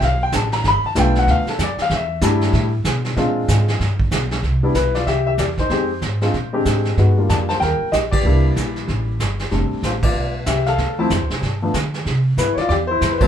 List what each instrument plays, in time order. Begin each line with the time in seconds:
0.00 upright bass B1, grand piano E5, brush sweep, kick, snare
0.04 grand piano F5
0.23 grand piano G5
0.32 upright bass A1, grand piano A5, kick, snare, hi-hat pedal
0.52 grand piano A#5, snare
0.64 upright bass G1, grand piano B5, brush sweep, kick, snare
0.83 grand piano A5, muted upright bass stroke
0.95 upright bass B1, grand piano A3 B3 D4 F4, kick, snare, hi-hat pedal
0.99 grand piano G5
1.15 grand piano F#5, snare
1.27 upright bass D2, grand piano F5, brush sweep, kick, snare
1.45 grand piano A4, muted upright bass stroke, snare
1.58 upright bass F2, kick, snare, hi-hat pedal
1.63 grand piano D5
1.77 muted upright bass stroke, snare
1.82 grand piano F5
1.90 upright bass E2, brush sweep, kick, snare
1.95 grand piano E5
2.21 upright bass G2, grand piano G3 A3 D4 E4, kick, snare, hi-hat pedal
2.41 snare
2.53 upright bass A2, brush sweep, kick, snare
2.84 upright bass B2, kick, snare, hi-hat pedal
3.05 snare
3.17 upright bass A#2, grand piano G#3 C4 D4 F4, brush sweep, kick, snare
3.48 upright bass G#2, kick, snare, hi-hat pedal
3.68 snare
3.80 upright bass G2, brush sweep, kick, snare
3.99 kick
4.11 upright bass B1, kick, snare, hi-hat pedal
4.31 snare
4.43 upright bass C2, brush sweep, kick, snare
4.63 grand piano G3 B3 D4 E4
4.74 upright bass B1, grand piano E4 B4, kick, snare, hi-hat pedal
4.95 grand piano F4 D5, snare
5.06 upright bass C2, grand piano G4 E5, brush sweep, kick, snare
5.27 grand piano G4 E5
5.38 upright bass E2, grand piano G4 D5, kick, snare, hi-hat pedal
5.58 grand piano D#4 C5, kick, snare
5.70 upright bass F2, grand piano G#3 C4 D#4 G4, brush sweep, kick, snare
6.01 upright bass G#2, kick, snare, hi-hat pedal
6.21 grand piano G#3 C4 D4 F4, snare
6.33 upright bass A#2, brush sweep, kick, snare
6.53 grand piano G#3 C4 D4 G4
6.65 upright bass G#2, kick, snare, hi-hat pedal
6.85 snare
6.97 upright bass G2, grand piano G#3 B3 D#4 F#4, brush sweep, kick, snare
7.18 grand piano G3 A#3 D4 F4
7.29 upright bass F2, grand piano D5 A5, kick, snare, hi-hat pedal
7.49 grand piano C5 A5, snare
7.60 upright bass D#2, grand piano A#4 G5, brush sweep, kick, snare
7.80 muted upright bass stroke
7.92 upright bass A#1, grand piano G4 D#5, kick, snare, hi-hat pedal
8.11 grand piano G4 D5, kick, crash
8.23 upright bass C2, grand piano G3 A#3 D4 E4, brush sweep
8.56 upright bass A#1, kick, snare, hi-hat pedal
8.76 snare
8.88 upright bass A1, brush sweep, kick, snare
9.19 upright bass G1, kick, snare, hi-hat pedal
9.39 snare
9.51 upright bass F1, grand piano G3 A3 C4 D4, brush sweep, kick, snare
9.70 muted upright bass stroke
9.83 upright bass A1, grand piano F4 C5, kick, snare, hi-hat pedal
10.03 grand piano F4 D5, kick, crash
10.13 upright bass B1, brush sweep
10.46 upright bass C2, grand piano G4 E5, kick, snare, hi-hat pedal
10.66 grand piano A4 F5, snare
10.78 upright bass D2, brush sweep, kick, snare
10.99 grand piano F3 A3 C4 E4 C5 A5
11.10 upright bass F2, kick, snare, hi-hat pedal
11.20 upright bass D2
11.30 upright bass C2, snare
11.42 upright bass G2, brush sweep, kick, snare
11.62 grand piano F3 A3 B3 D4
11.74 upright bass D3, kick, snare, hi-hat pedal
11.94 snare
12.05 upright bass C3, brush sweep, kick, snare
12.37 upright bass G2, grand piano E4 B4, kick, snare, hi-hat pedal
12.54 grand piano C#5, muted upright bass stroke, snare
12.58 grand piano F4 D5
12.69 upright bass E2, grand piano G4 D5, brush sweep, kick, snare
12.87 grand piano E4 C5
13.01 upright bass F2, kick, snare, hi-hat pedal
13.12 grand piano B4
13.18 grand piano E3 F#3 A3 C4 C5, kick, crash
13.23 grand piano E4